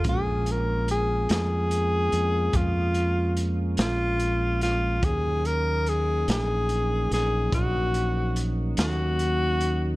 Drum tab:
HH |xxxxxxxxxxxx|xxxxxxxxxxxx|
SD |---o-----o-o|---o-o---o--|
BD |o-----o-----|o-----o-----|